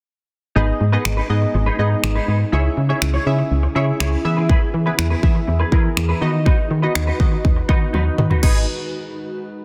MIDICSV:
0, 0, Header, 1, 7, 480
1, 0, Start_track
1, 0, Key_signature, 5, "minor"
1, 0, Tempo, 491803
1, 547, Time_signature, 4, 2, 24, 8
1, 9416, End_track
2, 0, Start_track
2, 0, Title_t, "Clean electric guitar"
2, 0, Program_c, 0, 27
2, 542, Note_on_c, 0, 63, 81
2, 552, Note_on_c, 0, 68, 81
2, 560, Note_on_c, 0, 71, 87
2, 651, Note_off_c, 0, 71, 0
2, 664, Note_off_c, 0, 68, 0
2, 736, Note_off_c, 0, 63, 0
2, 902, Note_on_c, 0, 71, 67
2, 911, Note_on_c, 0, 68, 60
2, 919, Note_on_c, 0, 63, 51
2, 1012, Note_off_c, 0, 63, 0
2, 1018, Note_off_c, 0, 68, 0
2, 1024, Note_off_c, 0, 71, 0
2, 1142, Note_on_c, 0, 71, 78
2, 1152, Note_on_c, 0, 68, 68
2, 1159, Note_on_c, 0, 63, 66
2, 1252, Note_off_c, 0, 63, 0
2, 1258, Note_off_c, 0, 68, 0
2, 1264, Note_off_c, 0, 71, 0
2, 1623, Note_on_c, 0, 71, 78
2, 1633, Note_on_c, 0, 68, 73
2, 1641, Note_on_c, 0, 63, 74
2, 1731, Note_off_c, 0, 63, 0
2, 1741, Note_off_c, 0, 68, 0
2, 1743, Note_on_c, 0, 63, 62
2, 1749, Note_off_c, 0, 71, 0
2, 1753, Note_on_c, 0, 68, 63
2, 1761, Note_on_c, 0, 71, 69
2, 1853, Note_off_c, 0, 71, 0
2, 1865, Note_off_c, 0, 68, 0
2, 1898, Note_off_c, 0, 63, 0
2, 2103, Note_on_c, 0, 71, 80
2, 2112, Note_on_c, 0, 68, 69
2, 2120, Note_on_c, 0, 63, 68
2, 2210, Note_off_c, 0, 63, 0
2, 2220, Note_off_c, 0, 68, 0
2, 2222, Note_on_c, 0, 63, 68
2, 2228, Note_off_c, 0, 71, 0
2, 2232, Note_on_c, 0, 68, 69
2, 2240, Note_on_c, 0, 71, 80
2, 2333, Note_off_c, 0, 71, 0
2, 2345, Note_off_c, 0, 68, 0
2, 2377, Note_off_c, 0, 63, 0
2, 2463, Note_on_c, 0, 64, 85
2, 2473, Note_on_c, 0, 68, 91
2, 2480, Note_on_c, 0, 73, 88
2, 2572, Note_off_c, 0, 73, 0
2, 2585, Note_off_c, 0, 68, 0
2, 2657, Note_off_c, 0, 64, 0
2, 2822, Note_on_c, 0, 73, 63
2, 2831, Note_on_c, 0, 68, 57
2, 2840, Note_on_c, 0, 64, 49
2, 2931, Note_off_c, 0, 64, 0
2, 2938, Note_off_c, 0, 68, 0
2, 2944, Note_off_c, 0, 73, 0
2, 3061, Note_on_c, 0, 73, 79
2, 3072, Note_on_c, 0, 68, 69
2, 3079, Note_on_c, 0, 64, 65
2, 3172, Note_off_c, 0, 64, 0
2, 3178, Note_off_c, 0, 68, 0
2, 3184, Note_off_c, 0, 73, 0
2, 3662, Note_on_c, 0, 64, 88
2, 3672, Note_on_c, 0, 68, 90
2, 3680, Note_on_c, 0, 73, 93
2, 3772, Note_off_c, 0, 73, 0
2, 3784, Note_off_c, 0, 68, 0
2, 3856, Note_off_c, 0, 64, 0
2, 3902, Note_on_c, 0, 64, 86
2, 3912, Note_on_c, 0, 68, 97
2, 3920, Note_on_c, 0, 73, 96
2, 4013, Note_off_c, 0, 73, 0
2, 4025, Note_off_c, 0, 68, 0
2, 4097, Note_off_c, 0, 64, 0
2, 4263, Note_on_c, 0, 71, 66
2, 4272, Note_on_c, 0, 68, 59
2, 4280, Note_on_c, 0, 64, 56
2, 4370, Note_off_c, 0, 64, 0
2, 4380, Note_off_c, 0, 68, 0
2, 4382, Note_on_c, 0, 64, 74
2, 4388, Note_off_c, 0, 71, 0
2, 4392, Note_on_c, 0, 68, 81
2, 4400, Note_on_c, 0, 71, 83
2, 4492, Note_off_c, 0, 71, 0
2, 4504, Note_off_c, 0, 68, 0
2, 4576, Note_off_c, 0, 64, 0
2, 4742, Note_on_c, 0, 71, 62
2, 4751, Note_on_c, 0, 68, 57
2, 4759, Note_on_c, 0, 64, 54
2, 4851, Note_off_c, 0, 64, 0
2, 4858, Note_off_c, 0, 68, 0
2, 4864, Note_off_c, 0, 71, 0
2, 4981, Note_on_c, 0, 71, 77
2, 4991, Note_on_c, 0, 68, 81
2, 4999, Note_on_c, 0, 64, 69
2, 5090, Note_off_c, 0, 64, 0
2, 5097, Note_off_c, 0, 68, 0
2, 5103, Note_off_c, 0, 71, 0
2, 5461, Note_on_c, 0, 71, 85
2, 5471, Note_on_c, 0, 68, 73
2, 5479, Note_on_c, 0, 64, 69
2, 5570, Note_off_c, 0, 64, 0
2, 5580, Note_off_c, 0, 68, 0
2, 5582, Note_on_c, 0, 64, 63
2, 5588, Note_off_c, 0, 71, 0
2, 5592, Note_on_c, 0, 68, 66
2, 5599, Note_on_c, 0, 71, 76
2, 5692, Note_off_c, 0, 71, 0
2, 5704, Note_off_c, 0, 68, 0
2, 5737, Note_off_c, 0, 64, 0
2, 5941, Note_on_c, 0, 71, 88
2, 5952, Note_on_c, 0, 68, 74
2, 5959, Note_on_c, 0, 64, 74
2, 6058, Note_off_c, 0, 64, 0
2, 6062, Note_on_c, 0, 63, 64
2, 6067, Note_off_c, 0, 71, 0
2, 6068, Note_off_c, 0, 68, 0
2, 6072, Note_on_c, 0, 66, 69
2, 6079, Note_on_c, 0, 71, 73
2, 6172, Note_off_c, 0, 71, 0
2, 6183, Note_off_c, 0, 66, 0
2, 6217, Note_off_c, 0, 63, 0
2, 6300, Note_on_c, 0, 63, 79
2, 6309, Note_on_c, 0, 66, 78
2, 6317, Note_on_c, 0, 71, 86
2, 6410, Note_off_c, 0, 71, 0
2, 6423, Note_off_c, 0, 66, 0
2, 6495, Note_off_c, 0, 63, 0
2, 6660, Note_on_c, 0, 71, 59
2, 6670, Note_on_c, 0, 66, 59
2, 6678, Note_on_c, 0, 63, 56
2, 6771, Note_off_c, 0, 63, 0
2, 6778, Note_off_c, 0, 66, 0
2, 6783, Note_off_c, 0, 71, 0
2, 6902, Note_on_c, 0, 71, 83
2, 6912, Note_on_c, 0, 66, 77
2, 6920, Note_on_c, 0, 63, 70
2, 7011, Note_off_c, 0, 63, 0
2, 7018, Note_off_c, 0, 66, 0
2, 7024, Note_off_c, 0, 71, 0
2, 7501, Note_on_c, 0, 63, 88
2, 7512, Note_on_c, 0, 66, 89
2, 7519, Note_on_c, 0, 71, 99
2, 7611, Note_off_c, 0, 71, 0
2, 7624, Note_off_c, 0, 66, 0
2, 7696, Note_off_c, 0, 63, 0
2, 7741, Note_on_c, 0, 63, 82
2, 7751, Note_on_c, 0, 66, 86
2, 7758, Note_on_c, 0, 71, 88
2, 7851, Note_off_c, 0, 71, 0
2, 7864, Note_off_c, 0, 66, 0
2, 7936, Note_off_c, 0, 63, 0
2, 8103, Note_on_c, 0, 71, 57
2, 8113, Note_on_c, 0, 66, 54
2, 8121, Note_on_c, 0, 63, 46
2, 8212, Note_off_c, 0, 63, 0
2, 8223, Note_on_c, 0, 63, 77
2, 8227, Note_off_c, 0, 71, 0
2, 8228, Note_off_c, 0, 66, 0
2, 8231, Note_on_c, 0, 68, 76
2, 8238, Note_on_c, 0, 71, 87
2, 8369, Note_off_c, 0, 63, 0
2, 8373, Note_off_c, 0, 68, 0
2, 8377, Note_off_c, 0, 71, 0
2, 9416, End_track
3, 0, Start_track
3, 0, Title_t, "Analog polysynth"
3, 0, Program_c, 1, 90
3, 545, Note_on_c, 1, 59, 81
3, 546, Note_on_c, 1, 63, 77
3, 548, Note_on_c, 1, 68, 78
3, 550, Note_on_c, 1, 75, 91
3, 820, Note_off_c, 1, 59, 0
3, 820, Note_off_c, 1, 63, 0
3, 821, Note_off_c, 1, 68, 0
3, 822, Note_off_c, 1, 75, 0
3, 904, Note_on_c, 1, 59, 81
3, 906, Note_on_c, 1, 63, 70
3, 908, Note_on_c, 1, 68, 71
3, 909, Note_on_c, 1, 75, 86
3, 1180, Note_off_c, 1, 59, 0
3, 1180, Note_off_c, 1, 63, 0
3, 1181, Note_off_c, 1, 68, 0
3, 1182, Note_off_c, 1, 75, 0
3, 1264, Note_on_c, 1, 59, 86
3, 1266, Note_on_c, 1, 63, 78
3, 1268, Note_on_c, 1, 68, 80
3, 1269, Note_on_c, 1, 75, 98
3, 1631, Note_off_c, 1, 59, 0
3, 1632, Note_off_c, 1, 63, 0
3, 1633, Note_off_c, 1, 68, 0
3, 1633, Note_off_c, 1, 75, 0
3, 1745, Note_on_c, 1, 59, 85
3, 1746, Note_on_c, 1, 63, 77
3, 1748, Note_on_c, 1, 68, 74
3, 1750, Note_on_c, 1, 75, 97
3, 2294, Note_off_c, 1, 59, 0
3, 2294, Note_off_c, 1, 63, 0
3, 2295, Note_off_c, 1, 68, 0
3, 2296, Note_off_c, 1, 75, 0
3, 2464, Note_on_c, 1, 61, 82
3, 2465, Note_on_c, 1, 64, 75
3, 2467, Note_on_c, 1, 68, 75
3, 2469, Note_on_c, 1, 76, 91
3, 2739, Note_off_c, 1, 61, 0
3, 2740, Note_off_c, 1, 64, 0
3, 2741, Note_off_c, 1, 68, 0
3, 2742, Note_off_c, 1, 76, 0
3, 2824, Note_on_c, 1, 61, 80
3, 2826, Note_on_c, 1, 64, 72
3, 2827, Note_on_c, 1, 68, 75
3, 2829, Note_on_c, 1, 76, 85
3, 3099, Note_off_c, 1, 61, 0
3, 3100, Note_off_c, 1, 64, 0
3, 3101, Note_off_c, 1, 68, 0
3, 3102, Note_off_c, 1, 76, 0
3, 3185, Note_on_c, 1, 61, 83
3, 3187, Note_on_c, 1, 64, 77
3, 3188, Note_on_c, 1, 68, 77
3, 3189, Note_on_c, 1, 76, 98
3, 3551, Note_off_c, 1, 61, 0
3, 3552, Note_off_c, 1, 64, 0
3, 3553, Note_off_c, 1, 68, 0
3, 3553, Note_off_c, 1, 76, 0
3, 3664, Note_on_c, 1, 61, 86
3, 3666, Note_on_c, 1, 64, 75
3, 3667, Note_on_c, 1, 68, 78
3, 3669, Note_on_c, 1, 76, 94
3, 4133, Note_off_c, 1, 64, 0
3, 4135, Note_off_c, 1, 68, 0
3, 4137, Note_off_c, 1, 76, 0
3, 4144, Note_on_c, 1, 59, 92
3, 4145, Note_off_c, 1, 61, 0
3, 4145, Note_on_c, 1, 64, 80
3, 4146, Note_on_c, 1, 68, 83
3, 4149, Note_on_c, 1, 76, 102
3, 4625, Note_off_c, 1, 59, 0
3, 4626, Note_off_c, 1, 64, 0
3, 4627, Note_off_c, 1, 68, 0
3, 4628, Note_off_c, 1, 76, 0
3, 4745, Note_on_c, 1, 59, 82
3, 4747, Note_on_c, 1, 64, 72
3, 4748, Note_on_c, 1, 68, 73
3, 4750, Note_on_c, 1, 71, 86
3, 5020, Note_off_c, 1, 59, 0
3, 5021, Note_off_c, 1, 64, 0
3, 5022, Note_off_c, 1, 68, 0
3, 5023, Note_off_c, 1, 71, 0
3, 5105, Note_on_c, 1, 59, 85
3, 5107, Note_on_c, 1, 64, 81
3, 5108, Note_on_c, 1, 68, 76
3, 5109, Note_on_c, 1, 76, 91
3, 5471, Note_off_c, 1, 59, 0
3, 5472, Note_off_c, 1, 64, 0
3, 5473, Note_off_c, 1, 68, 0
3, 5473, Note_off_c, 1, 76, 0
3, 5585, Note_on_c, 1, 59, 83
3, 5587, Note_on_c, 1, 64, 79
3, 5589, Note_on_c, 1, 68, 77
3, 5591, Note_on_c, 1, 70, 95
3, 6053, Note_off_c, 1, 59, 0
3, 6064, Note_on_c, 1, 59, 91
3, 6066, Note_on_c, 1, 63, 83
3, 6067, Note_off_c, 1, 64, 0
3, 6067, Note_on_c, 1, 66, 81
3, 6068, Note_off_c, 1, 68, 0
3, 6069, Note_off_c, 1, 70, 0
3, 6069, Note_on_c, 1, 75, 103
3, 6546, Note_off_c, 1, 59, 0
3, 6546, Note_off_c, 1, 63, 0
3, 6547, Note_off_c, 1, 66, 0
3, 6548, Note_off_c, 1, 75, 0
3, 6664, Note_on_c, 1, 59, 80
3, 6666, Note_on_c, 1, 63, 72
3, 6668, Note_on_c, 1, 66, 74
3, 6669, Note_on_c, 1, 75, 85
3, 6939, Note_off_c, 1, 59, 0
3, 6940, Note_off_c, 1, 63, 0
3, 6941, Note_off_c, 1, 66, 0
3, 6942, Note_off_c, 1, 75, 0
3, 7025, Note_on_c, 1, 59, 86
3, 7026, Note_on_c, 1, 63, 77
3, 7028, Note_on_c, 1, 66, 78
3, 7029, Note_on_c, 1, 75, 98
3, 7391, Note_off_c, 1, 59, 0
3, 7392, Note_off_c, 1, 63, 0
3, 7393, Note_off_c, 1, 66, 0
3, 7393, Note_off_c, 1, 75, 0
3, 7505, Note_on_c, 1, 59, 84
3, 7506, Note_on_c, 1, 63, 75
3, 7508, Note_on_c, 1, 66, 78
3, 7509, Note_on_c, 1, 75, 97
3, 8054, Note_off_c, 1, 59, 0
3, 8055, Note_off_c, 1, 63, 0
3, 8056, Note_off_c, 1, 66, 0
3, 8056, Note_off_c, 1, 75, 0
3, 8226, Note_on_c, 1, 63, 77
3, 8226, Note_on_c, 1, 75, 89
3, 8227, Note_on_c, 1, 59, 82
3, 8227, Note_on_c, 1, 68, 73
3, 8450, Note_off_c, 1, 59, 0
3, 8450, Note_off_c, 1, 63, 0
3, 8450, Note_off_c, 1, 68, 0
3, 8450, Note_off_c, 1, 75, 0
3, 9416, End_track
4, 0, Start_track
4, 0, Title_t, "Ambient pad"
4, 0, Program_c, 2, 92
4, 548, Note_on_c, 2, 56, 81
4, 548, Note_on_c, 2, 59, 73
4, 548, Note_on_c, 2, 63, 88
4, 2448, Note_off_c, 2, 56, 0
4, 2448, Note_off_c, 2, 59, 0
4, 2448, Note_off_c, 2, 63, 0
4, 2467, Note_on_c, 2, 61, 71
4, 2467, Note_on_c, 2, 64, 74
4, 2468, Note_on_c, 2, 49, 83
4, 2469, Note_on_c, 2, 68, 91
4, 4130, Note_off_c, 2, 61, 0
4, 4131, Note_off_c, 2, 49, 0
4, 4147, Note_on_c, 2, 52, 82
4, 4147, Note_on_c, 2, 59, 88
4, 6031, Note_off_c, 2, 64, 0
4, 6032, Note_off_c, 2, 68, 0
4, 6048, Note_off_c, 2, 52, 0
4, 6048, Note_off_c, 2, 59, 0
4, 6066, Note_on_c, 2, 71, 87
4, 6067, Note_on_c, 2, 63, 75
4, 6067, Note_on_c, 2, 66, 73
4, 6068, Note_on_c, 2, 51, 81
4, 8205, Note_off_c, 2, 63, 0
4, 8205, Note_off_c, 2, 66, 0
4, 8205, Note_off_c, 2, 71, 0
4, 8206, Note_off_c, 2, 51, 0
4, 9416, End_track
5, 0, Start_track
5, 0, Title_t, "FM bass"
5, 0, Program_c, 3, 39
5, 547, Note_on_c, 3, 32, 100
5, 703, Note_off_c, 3, 32, 0
5, 787, Note_on_c, 3, 44, 100
5, 943, Note_off_c, 3, 44, 0
5, 1026, Note_on_c, 3, 32, 98
5, 1183, Note_off_c, 3, 32, 0
5, 1265, Note_on_c, 3, 44, 98
5, 1422, Note_off_c, 3, 44, 0
5, 1506, Note_on_c, 3, 32, 109
5, 1662, Note_off_c, 3, 32, 0
5, 1745, Note_on_c, 3, 44, 99
5, 1902, Note_off_c, 3, 44, 0
5, 1985, Note_on_c, 3, 32, 99
5, 2142, Note_off_c, 3, 32, 0
5, 2226, Note_on_c, 3, 44, 93
5, 2382, Note_off_c, 3, 44, 0
5, 2466, Note_on_c, 3, 37, 107
5, 2622, Note_off_c, 3, 37, 0
5, 2706, Note_on_c, 3, 49, 97
5, 2862, Note_off_c, 3, 49, 0
5, 2946, Note_on_c, 3, 37, 97
5, 3102, Note_off_c, 3, 37, 0
5, 3186, Note_on_c, 3, 49, 106
5, 3342, Note_off_c, 3, 49, 0
5, 3427, Note_on_c, 3, 37, 105
5, 3583, Note_off_c, 3, 37, 0
5, 3667, Note_on_c, 3, 49, 96
5, 3823, Note_off_c, 3, 49, 0
5, 3906, Note_on_c, 3, 37, 97
5, 4062, Note_off_c, 3, 37, 0
5, 4147, Note_on_c, 3, 52, 101
5, 4459, Note_off_c, 3, 52, 0
5, 4626, Note_on_c, 3, 52, 104
5, 4782, Note_off_c, 3, 52, 0
5, 4866, Note_on_c, 3, 40, 100
5, 5022, Note_off_c, 3, 40, 0
5, 5105, Note_on_c, 3, 52, 102
5, 5262, Note_off_c, 3, 52, 0
5, 5346, Note_on_c, 3, 40, 105
5, 5502, Note_off_c, 3, 40, 0
5, 5584, Note_on_c, 3, 52, 100
5, 5741, Note_off_c, 3, 52, 0
5, 5827, Note_on_c, 3, 40, 102
5, 5983, Note_off_c, 3, 40, 0
5, 6066, Note_on_c, 3, 51, 96
5, 6378, Note_off_c, 3, 51, 0
5, 6547, Note_on_c, 3, 51, 99
5, 6703, Note_off_c, 3, 51, 0
5, 6788, Note_on_c, 3, 39, 95
5, 6943, Note_off_c, 3, 39, 0
5, 7026, Note_on_c, 3, 51, 100
5, 7182, Note_off_c, 3, 51, 0
5, 7268, Note_on_c, 3, 39, 107
5, 7424, Note_off_c, 3, 39, 0
5, 7505, Note_on_c, 3, 51, 102
5, 7662, Note_off_c, 3, 51, 0
5, 7748, Note_on_c, 3, 39, 90
5, 7904, Note_off_c, 3, 39, 0
5, 7987, Note_on_c, 3, 51, 103
5, 8143, Note_off_c, 3, 51, 0
5, 8227, Note_on_c, 3, 32, 101
5, 8450, Note_off_c, 3, 32, 0
5, 9416, End_track
6, 0, Start_track
6, 0, Title_t, "Muted clean electric guitar strokes"
6, 663, Note_on_c, 9, 29, 48
6, 761, Note_off_c, 9, 29, 0
6, 784, Note_on_c, 9, 29, 35
6, 882, Note_off_c, 9, 29, 0
6, 1023, Note_on_c, 9, 29, 40
6, 1121, Note_off_c, 9, 29, 0
6, 1263, Note_on_c, 9, 29, 42
6, 1361, Note_off_c, 9, 29, 0
6, 1384, Note_on_c, 9, 29, 42
6, 1481, Note_off_c, 9, 29, 0
6, 1505, Note_on_c, 9, 29, 44
6, 1602, Note_off_c, 9, 29, 0
6, 1864, Note_on_c, 9, 29, 40
6, 1962, Note_off_c, 9, 29, 0
6, 1984, Note_on_c, 9, 29, 45
6, 2082, Note_off_c, 9, 29, 0
6, 2344, Note_on_c, 9, 29, 45
6, 2442, Note_off_c, 9, 29, 0
6, 2584, Note_on_c, 9, 29, 52
6, 2682, Note_off_c, 9, 29, 0
6, 2704, Note_on_c, 9, 29, 42
6, 2801, Note_off_c, 9, 29, 0
6, 2943, Note_on_c, 9, 29, 45
6, 3041, Note_off_c, 9, 29, 0
6, 3183, Note_on_c, 9, 29, 35
6, 3281, Note_off_c, 9, 29, 0
6, 3303, Note_on_c, 9, 29, 50
6, 3401, Note_off_c, 9, 29, 0
6, 3545, Note_on_c, 9, 29, 54
6, 3642, Note_off_c, 9, 29, 0
6, 3784, Note_on_c, 9, 29, 44
6, 3881, Note_off_c, 9, 29, 0
6, 4025, Note_on_c, 9, 29, 45
6, 4123, Note_off_c, 9, 29, 0
6, 4145, Note_on_c, 9, 29, 44
6, 4243, Note_off_c, 9, 29, 0
6, 4504, Note_on_c, 9, 29, 50
6, 4601, Note_off_c, 9, 29, 0
6, 4624, Note_on_c, 9, 29, 41
6, 4721, Note_off_c, 9, 29, 0
6, 4863, Note_on_c, 9, 29, 41
6, 4960, Note_off_c, 9, 29, 0
6, 5102, Note_on_c, 9, 29, 39
6, 5200, Note_off_c, 9, 29, 0
6, 5223, Note_on_c, 9, 29, 53
6, 5321, Note_off_c, 9, 29, 0
6, 5343, Note_on_c, 9, 29, 37
6, 5441, Note_off_c, 9, 29, 0
6, 5704, Note_on_c, 9, 29, 43
6, 5801, Note_off_c, 9, 29, 0
6, 5823, Note_on_c, 9, 29, 48
6, 5921, Note_off_c, 9, 29, 0
6, 6183, Note_on_c, 9, 29, 51
6, 6281, Note_off_c, 9, 29, 0
6, 6422, Note_on_c, 9, 29, 49
6, 6519, Note_off_c, 9, 29, 0
6, 6542, Note_on_c, 9, 29, 47
6, 6639, Note_off_c, 9, 29, 0
6, 7023, Note_on_c, 9, 29, 39
6, 7120, Note_off_c, 9, 29, 0
6, 7143, Note_on_c, 9, 29, 50
6, 7241, Note_off_c, 9, 29, 0
6, 7383, Note_on_c, 9, 29, 44
6, 7481, Note_off_c, 9, 29, 0
6, 7623, Note_on_c, 9, 29, 42
6, 7721, Note_off_c, 9, 29, 0
6, 7863, Note_on_c, 9, 29, 48
6, 7961, Note_off_c, 9, 29, 0
6, 7984, Note_on_c, 9, 29, 41
6, 8082, Note_off_c, 9, 29, 0
6, 9416, End_track
7, 0, Start_track
7, 0, Title_t, "Drums"
7, 1027, Note_on_c, 9, 26, 110
7, 1124, Note_off_c, 9, 26, 0
7, 1987, Note_on_c, 9, 26, 113
7, 2085, Note_off_c, 9, 26, 0
7, 2946, Note_on_c, 9, 26, 109
7, 3044, Note_off_c, 9, 26, 0
7, 3908, Note_on_c, 9, 26, 115
7, 4006, Note_off_c, 9, 26, 0
7, 4387, Note_on_c, 9, 36, 112
7, 4485, Note_off_c, 9, 36, 0
7, 4867, Note_on_c, 9, 26, 112
7, 4965, Note_off_c, 9, 26, 0
7, 5106, Note_on_c, 9, 36, 88
7, 5203, Note_off_c, 9, 36, 0
7, 5584, Note_on_c, 9, 36, 87
7, 5682, Note_off_c, 9, 36, 0
7, 5828, Note_on_c, 9, 26, 112
7, 5926, Note_off_c, 9, 26, 0
7, 6307, Note_on_c, 9, 36, 114
7, 6405, Note_off_c, 9, 36, 0
7, 6787, Note_on_c, 9, 26, 115
7, 6885, Note_off_c, 9, 26, 0
7, 7026, Note_on_c, 9, 36, 88
7, 7123, Note_off_c, 9, 36, 0
7, 7269, Note_on_c, 9, 36, 90
7, 7366, Note_off_c, 9, 36, 0
7, 7504, Note_on_c, 9, 36, 91
7, 7602, Note_off_c, 9, 36, 0
7, 7748, Note_on_c, 9, 48, 54
7, 7845, Note_off_c, 9, 48, 0
7, 7987, Note_on_c, 9, 45, 88
7, 8085, Note_off_c, 9, 45, 0
7, 8107, Note_on_c, 9, 43, 84
7, 8205, Note_off_c, 9, 43, 0
7, 8227, Note_on_c, 9, 36, 108
7, 8227, Note_on_c, 9, 49, 88
7, 8325, Note_off_c, 9, 36, 0
7, 8325, Note_off_c, 9, 49, 0
7, 9416, End_track
0, 0, End_of_file